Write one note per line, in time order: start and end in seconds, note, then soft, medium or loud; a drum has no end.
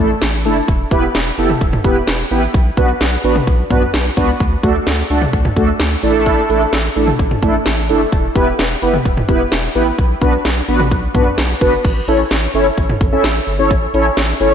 0.00 0.15 A1 loud
0.00 0.10 A3 medium
0.00 0.10 D4 medium
0.00 0.10 E4 medium
0.00 0.10 A4 medium
0.22 0.46 A1 medium
0.22 snare loud
0.22 closed hi-hat medium
0.45 0.61 F#1 medium
0.45 0.57 A3 medium
0.45 0.57 D4 medium
0.45 0.57 E4 medium
0.45 0.57 A4 medium
0.45 closed hi-hat medium
0.68 0.85 E1 loud
0.68 kick loud
0.68 closed hi-hat medium
0.91 1.08 E1 loud
0.91 1.03 B3 medium
0.91 1.03 E4 medium
0.91 1.03 G4 medium
0.91 1.03 B4 medium
0.91 kick medium
0.91 closed hi-hat medium
1.15 1.31 E1 loud
1.15 snare loud
1.15 closed hi-hat medium
1.38 1.54 F#1 medium
1.38 1.50 B3 medium
1.38 1.50 E4 medium
1.38 1.50 G4 medium
1.38 1.50 A4 medium
1.38 closed hi-hat medium
1.50 mid tom medium
1.61 1.77 E1 loud
1.61 kick medium
1.61 closed hi-hat medium
1.73 mid tom loud
1.84 2.01 E1 loud
1.84 1.96 B3 medium
1.84 1.96 E4 medium
1.84 1.96 G4 medium
1.84 1.96 B4 medium
1.84 kick medium
1.84 closed hi-hat medium
2.07 2.24 E1 medium
2.07 snare loud
2.07 closed hi-hat medium
2.31 2.47 A1 medium
2.31 2.43 B3 medium
2.31 2.43 E4 medium
2.31 2.43 G4 medium
2.31 2.43 B4 medium
2.31 closed hi-hat medium
2.54 2.71 B1 loud
2.54 kick loud
2.54 closed hi-hat medium
2.77 2.94 B1 loud
2.77 2.89 B3 medium
2.77 2.89 D4 medium
2.77 2.89 F#4 medium
2.77 2.89 B4 medium
2.77 kick medium
2.77 closed hi-hat medium
3.01 3.17 B1 loud
3.01 snare loud
3.01 closed hi-hat medium
3.24 3.40 A1 medium
3.24 3.36 B3 medium
3.24 3.36 D4 medium
3.24 3.36 F#4 medium
3.24 3.36 B4 medium
3.24 closed hi-hat medium
3.36 mid tom medium
3.47 3.64 B1 loud
3.47 kick medium
3.47 closed hi-hat medium
3.70 3.87 B1 medium
3.70 3.83 B3 medium
3.70 3.82 D4 medium
3.70 3.83 F#4 medium
3.70 3.83 B4 medium
3.70 kick medium
3.70 closed hi-hat medium
3.70 mid tom loud
3.94 4.10 B1 loud
3.94 snare loud
3.94 closed hi-hat medium
4.17 4.33 C#2 medium
4.17 4.29 B3 medium
4.17 4.29 D4 medium
4.17 4.29 F#4 medium
4.17 4.29 B4 medium
4.17 kick medium
4.17 closed hi-hat medium
4.40 4.57 D2 loud
4.40 kick loud
4.40 closed hi-hat medium
4.63 4.80 D2 loud
4.63 4.75 A3 medium
4.63 4.75 D4 medium
4.63 4.75 F#4 medium
4.63 4.75 A4 medium
4.63 kick medium
4.63 closed hi-hat medium
4.87 5.03 D2 loud
4.87 snare loud
4.87 closed hi-hat medium
5.10 5.26 C#2 loud
5.10 5.22 A3 medium
5.10 5.22 D4 medium
5.10 5.22 F#4 medium
5.10 5.22 A4 loud
5.10 closed hi-hat medium
5.22 mid tom medium
5.33 5.50 D2 loud
5.33 kick medium
5.33 closed hi-hat medium
5.45 mid tom medium
5.56 5.73 D2 loud
5.56 5.68 A3 medium
5.56 5.68 D4 medium
5.56 5.68 F#4 medium
5.56 5.68 A4 medium
5.56 kick medium
5.56 closed hi-hat medium
5.80 5.96 D2 loud
5.80 snare loud
5.80 closed hi-hat medium
6.03 6.36 A1 loud
6.03 6.40 A3 medium
6.03 6.40 D4 medium
6.03 6.40 E4 medium
6.03 6.40 A4 loud
6.03 closed hi-hat medium
6.26 kick loud
6.26 closed hi-hat medium
6.50 6.66 A1 loud
6.50 6.61 A3 medium
6.50 6.61 D4 medium
6.50 6.61 E4 medium
6.50 6.61 A4 medium
6.50 closed hi-hat medium
6.73 6.89 A1 loud
6.73 snare loud
6.73 closed hi-hat medium
6.96 7.12 A1 loud
6.96 7.08 A3 medium
6.96 7.08 D4 medium
6.96 7.08 E4 medium
6.96 7.08 A4 medium
6.96 closed hi-hat medium
7.07 mid tom medium
7.19 7.36 A1 loud
7.19 kick medium
7.19 closed hi-hat medium
7.31 mid tom medium
7.43 7.59 A1 loud
7.43 7.54 A3 medium
7.43 7.54 D4 medium
7.43 7.55 E4 medium
7.43 7.54 A4 medium
7.43 kick medium
7.43 closed hi-hat medium
7.66 7.91 A1 medium
7.66 snare loud
7.66 closed hi-hat medium
7.89 8.06 F#1 medium
7.89 8.01 A3 medium
7.89 8.01 D4 medium
7.89 8.01 E4 medium
7.89 8.01 A4 loud
7.89 closed hi-hat medium
8.12 8.29 E1 loud
8.12 kick loud
8.12 closed hi-hat medium
8.36 8.52 E1 loud
8.36 8.47 B3 medium
8.36 8.47 E4 medium
8.36 8.48 G4 medium
8.36 8.47 B4 medium
8.36 kick medium
8.36 closed hi-hat medium
8.59 8.75 E1 loud
8.59 snare loud
8.59 closed hi-hat medium
8.82 8.99 F#1 medium
8.82 8.94 B3 medium
8.82 8.94 E4 medium
8.82 8.94 G4 medium
8.82 8.94 B4 medium
8.82 closed hi-hat medium
8.94 mid tom medium
9.05 9.22 E1 loud
9.05 kick medium
9.05 closed hi-hat medium
9.17 mid tom medium
9.29 9.45 E1 loud
9.29 9.41 B3 medium
9.29 9.40 E4 medium
9.29 9.40 G4 medium
9.29 9.41 B4 medium
9.29 kick medium
9.29 closed hi-hat medium
9.52 9.68 E1 loud
9.52 snare loud
9.52 closed hi-hat medium
9.75 9.92 A1 medium
9.75 9.87 B3 medium
9.75 9.87 E4 medium
9.75 9.87 G4 medium
9.75 9.87 B4 loud
9.75 closed hi-hat medium
9.98 10.15 B1 loud
9.98 kick loud
9.98 closed hi-hat medium
10.22 10.38 B1 loud
10.22 10.34 B3 medium
10.22 10.34 D4 medium
10.22 10.33 F#4 medium
10.22 10.34 B4 medium
10.22 kick medium
10.22 closed hi-hat medium
10.45 10.61 B1 loud
10.45 snare loud
10.45 closed hi-hat medium
10.68 10.93 A1 medium
10.68 10.80 B3 medium
10.68 10.80 D4 medium
10.68 10.80 F#4 medium
10.68 10.80 B4 loud
10.68 closed hi-hat medium
10.80 mid tom medium
10.92 11.08 B1 loud
10.92 kick medium
10.92 closed hi-hat medium
11.15 11.31 B1 loud
11.15 11.27 B3 medium
11.15 11.27 D4 medium
11.15 11.27 F#4 medium
11.15 11.27 B4 medium
11.15 kick medium
11.15 closed hi-hat medium
11.15 mid tom loud
11.38 11.54 B1 loud
11.38 snare loud
11.38 closed hi-hat medium
11.61 11.78 G1 medium
11.61 11.73 B3 medium
11.61 11.73 D4 medium
11.61 11.73 F#4 medium
11.61 11.73 B4 medium
11.61 kick loud
11.61 closed hi-hat medium
11.84 12.01 A1 loud
11.84 kick loud
11.84 closed hi-hat medium
11.84 crash medium
12.08 12.24 A1 medium
12.08 12.20 C#4 medium
12.08 12.20 E4 medium
12.08 12.20 A4 medium
12.08 12.20 C#5 medium
12.08 closed hi-hat medium
12.31 12.47 A1 loud
12.31 snare loud
12.31 closed hi-hat medium
12.54 12.70 G1 medium
12.54 12.66 C#4 medium
12.54 12.66 E4 medium
12.54 12.66 A4 medium
12.54 12.66 C#5 medium
12.54 closed hi-hat medium
12.78 12.94 A1 loud
12.78 kick medium
12.78 closed hi-hat medium
12.90 mid tom medium
13.01 13.17 A1 loud
13.01 13.07 A4 medium
13.01 13.07 C#5 medium
13.01 kick medium
13.01 closed hi-hat medium
13.12 13.24 C#4 medium
13.12 13.24 E4 medium
13.12 13.24 A4 medium
13.12 13.24 E5 medium
13.24 13.40 A1 loud
13.24 snare loud
13.24 closed hi-hat medium
13.47 13.72 G1 loud
13.47 13.53 A4 medium
13.47 13.53 C#5 loud
13.47 closed hi-hat medium
13.59 13.71 C#4 medium
13.59 13.71 E4 medium
13.59 13.71 A4 medium
13.59 13.71 C#5 medium
13.71 13.87 A1 loud
13.71 kick loud
13.71 closed hi-hat medium
13.94 14.10 A1 medium
13.94 14.06 C#4 medium
13.94 14.06 E4 medium
13.94 14.06 A4 medium
13.94 14.06 C#5 loud
13.94 closed hi-hat medium
14.17 14.33 A1 loud
14.17 snare loud
14.17 closed hi-hat medium
14.40 14.54 G1 medium
14.40 14.52 C#4 medium
14.40 14.52 E4 medium
14.40 14.52 A4 medium
14.40 14.52 C#5 medium
14.40 closed hi-hat medium